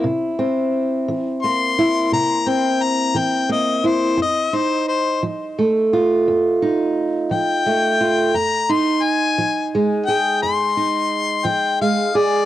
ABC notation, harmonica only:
X:1
M:12/8
L:1/8
Q:3/8=58
K:F
V:1 name="Harmonica"
z4 c'2 b g b g _e c | _e c c z6 g3 | b c' _a2 z g c'3 g f d |]